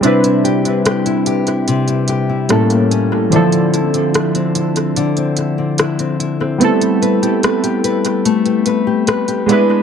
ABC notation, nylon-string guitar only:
X:1
M:4/4
L:1/16
Q:1/4=73
K:Am
V:1 name="Nylon-string guitar"
C, E G E G E G E C, E G E A,, _B, ^C B, | D, C E C E C E C D, C E C E C E C | A, G B G B G B G A, G B G B G ^G, E |]